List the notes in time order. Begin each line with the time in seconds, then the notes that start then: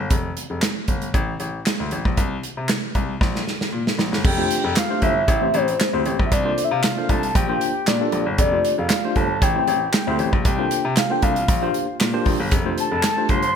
0.00 G1
0.10 F1, kick, closed hi-hat
0.37 closed hi-hat
0.50 F1
0.62 snare, clap, closed hi-hat
0.88 G1, kick, closed hi-hat
1.02 closed hi-hat
1.14 A1, kick, closed hi-hat
1.40 A1, closed hi-hat
1.66 snare, clap, closed hi-hat
1.80 D2
1.91 A1, closed hi-hat
2.05 A#1, kick
2.17 C2, kick, closed hi-hat
2.43 closed hi-hat
2.57 C3
2.69 snare, clap, closed hi-hat
2.95 C2, kick, closed hi-hat
3.21 A#1, kick, snare
3.36 snare
3.47 snare
3.61 snare
3.73 A#2
3.87 snare
3.99 A#1, snare
4.12 G1, snare
4.24 F1 G5, kick, crash
4.38 A3 D4 F4 G4 C5
4.51 closed hi-hat
4.64 F1
4.76 F5, snare, clap, closed hi-hat
4.90 A3 D4 F4 G4 C5
5.02 G1 E5, kick, closed hi-hat
5.28 A1, kick, closed hi-hat
5.41 A3 C4 E4 G4 C5
5.54 A1 C5, closed hi-hat
5.68 closed hi-hat
5.80 snare, clap, closed hi-hat
5.93 D2 A3 C4 E4 G4 C5
6.06 A1, closed hi-hat
6.19 A#1, kick
6.26 E5
6.32 C2 D5, kick, closed hi-hat
6.45 A#3 D4 F4 A4 C5
6.58 closed hi-hat
6.64 E5
6.71 C3 F5
6.84 snare, clap, closed hi-hat
6.97 A#3 D4 F4 A4 C5
7.09 C2 A5, kick, closed hi-hat
7.23 closed hi-hat
7.35 A#1 G5, kick, closed hi-hat
7.49 A#3 D4 F4 G4 C5
7.61 closed hi-hat
7.87 A#2 D5, snare, clap, closed hi-hat
8.01 A#3 D4 F4 G4 A4
8.12 A#1, closed hi-hat
8.26 G1
8.38 F1 D5, kick, closed hi-hat
8.52 A3 D4 F4 G4 C5
8.65 closed hi-hat
8.78 F1 F5
8.90 snare, clap, closed hi-hat
9.04 A3 D4 F4 G4 C5
9.16 G1 A5, kick, closed hi-hat
9.42 A1 G5, kick, closed hi-hat
9.55 A3 C4 E4 G4 C5
9.68 A1, closed hi-hat
9.93 G5, snare, clap, closed hi-hat
10.07 D2 A3 C4 E4 G4 C5
10.19 A1, closed hi-hat
10.33 A#1, kick
10.45 C2 G5, kick, closed hi-hat
10.58 A#3 D4 F4 A4 C5
10.71 closed hi-hat
10.85 C3
10.97 F5, snare, clap, closed hi-hat
11.10 A#3 D4 F4 A4 C5 G5
11.22 C2 F5, kick, closed hi-hat
11.36 closed hi-hat
11.48 A#1, kick, closed hi-hat
11.62 A#3 D4 F4 G4 C5
11.74 closed hi-hat
12.00 A#2, snare, clap, closed hi-hat
12.14 A#3 D4 F4 G4 C5
12.26 A#1, kick, open hi-hat
12.40 G1
12.51 F1, kick, closed hi-hat
12.65 A3 D4 F4 G4 C5
12.78 A5, closed hi-hat
12.91 F1 A5
13.03 snare, clap, closed hi-hat
13.17 A3 D4 F4 G4 C5
13.29 G1 C6, kick, closed hi-hat
13.43 closed hi-hat